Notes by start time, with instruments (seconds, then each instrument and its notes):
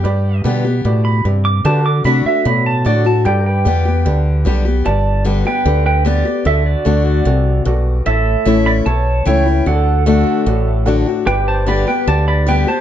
Already playing: pedal steel guitar G4 B4 D5 G5
0.04 fingered electric bass G2, steel-string acoustic guitar G2, upright piano G4 B4 D5
0.44 fingered electric bass B2, steel-string acoustic guitar D3 G3 B3 G4, upright piano G4 B4 D5
0.65 steel-string acoustic guitar B3 G4
0.85 fingered electric bass A2, steel-string acoustic guitar B2, upright piano G4 B4 D5
1.05 pedal steel guitar B5
1.25 fingered electric bass G2, steel-string acoustic guitar C3, upright piano G4 B4 D5
1.45 pedal steel guitar D6
1.65 steel-string acoustic guitar D3, fingered electric bass D3, upright piano F#4 A4 D5, pedal steel guitar G4 B4 D5 A5
1.86 pedal steel guitar F#4 D6
1.91 pedal steel guitar A4
2.04 fingered electric bass C3, steel-string acoustic guitar D3 A3 D4 F#4, upright piano F#4 A4 D5, pedal steel guitar B5
2.25 steel-string acoustic guitar D4 F#4, pedal steel guitar E5, muted fingered electric bass stroke
2.44 steel-string acoustic guitar A2, fingered electric bass B2, upright piano F#4 A4 D5, pedal steel guitar B5
2.66 pedal steel guitar A5
2.85 fingered electric bass A2, steel-string acoustic guitar D3 A3 D4 F#4, upright piano F#4 A4 D5, pedal steel guitar D5
3.05 steel-string acoustic guitar D4 F#4, pedal steel guitar A5
3.25 steel-string acoustic guitar G2, fingered electric bass G2, upright piano G4 B4 D5, pedal steel guitar G4 A4 D5 G5
3.46 pedal steel guitar G5
3.51 pedal steel guitar B4
3.65 fingered electric bass E2, steel-string acoustic guitar D3 G3 B3 G4, upright piano G4 B4 D5
3.85 steel-string acoustic guitar B3 G4
4.05 fingered electric bass D2, steel-string acoustic guitar D3, upright piano G4 B4 D5
4.45 fingered electric bass B1, steel-string acoustic guitar D3 G3 B3 G4, upright piano G4 B4 D5
4.65 steel-string acoustic guitar B3 G4
4.85 fingered electric bass G1, steel-string acoustic guitar G2, upright piano G4 B4 D5, pedal steel guitar D5 A5
5.25 steel-string acoustic guitar D3 G3 B3 G4, upright piano G4 B4 D5
5.45 steel-string acoustic guitar B3 G4, pedal steel guitar B4 G5
5.65 fingered electric bass D2, steel-string acoustic guitar D3, upright piano G4 B4 D5
5.86 pedal steel guitar B4 G5
6.05 steel-string acoustic guitar D3 G3 B3 G4, upright piano G4 B4 D5, pedal steel guitar G4 D5
6.25 steel-string acoustic guitar B3 G4
6.45 fingered electric bass D2, steel-string acoustic guitar D3, upright piano F#4 A4 D5, pedal steel guitar A4 E5
6.66 pedal steel guitar F#4 D5
6.85 fingered electric bass D2, steel-string acoustic guitar D3 A3 D4 F#4, upright piano F#4 A4 D5
7.05 pedal steel guitar F#4 D5
7.25 fingered electric bass C2, steel-string acoustic guitar C3, upright piano F#4 A4 D5
7.65 fingered electric bass B1, steel-string acoustic guitar G2, upright piano F#4 A4 D5
8.06 fingered electric bass A1, steel-string acoustic guitar A2, upright piano E4 A4 C#5, pedal steel guitar A4 E5
8.45 fingered electric bass A1, steel-string acoustic guitar E3 A3 C#4 E4, upright piano E4 A4 C#5
8.66 pedal steel guitar D5 B5
8.86 fingered electric bass B1, steel-string acoustic guitar E2, upright piano E4 A4 C#5, pedal steel guitar C#5 A5
9.25 fingered electric bass C#2, steel-string acoustic guitar E3 A3 C#4 E4, upright piano E4 A4 C#5, pedal steel guitar C#5 G5
9.46 steel-string acoustic guitar C#4 E4
9.66 fingered electric bass D2, steel-string acoustic guitar D3, upright piano F#4 A4 D5, pedal steel guitar A4 F#5
10.06 steel-string acoustic guitar D3 A3 D4 F#4, upright piano F#4 A4 D5, pedal steel guitar A4 F#5
10.46 fingered electric bass A1, steel-string acoustic guitar A2, upright piano F#4 A4 D5
10.67 upright piano E5
10.86 steel-string acoustic guitar D3 A3 D4 F#4, upright piano F#4 A4 D5 F#5
11.06 steel-string acoustic guitar D4 F#4, upright piano G5
11.26 fingered electric bass G1, steel-string acoustic guitar G2, upright piano G4 B4 D5, pedal steel guitar G4 B4 D5 G5
11.48 pedal steel guitar C5 A5
11.66 steel-string acoustic guitar D3 G3 B3 G4, upright piano G4 B4 D5, pedal steel guitar D5 B5
11.87 steel-string acoustic guitar B3 G4, pedal steel guitar B4 G5
12.06 fingered electric bass D2, steel-string acoustic guitar D3, upright piano G4 B4 D5, pedal steel guitar D5 A5
12.28 pedal steel guitar D5 B5
12.46 steel-string acoustic guitar D3 G3 B3 G4, upright piano G4 B4 D5, pedal steel guitar B4 G5
12.67 steel-string acoustic guitar B3 G4, pedal steel guitar C5 A5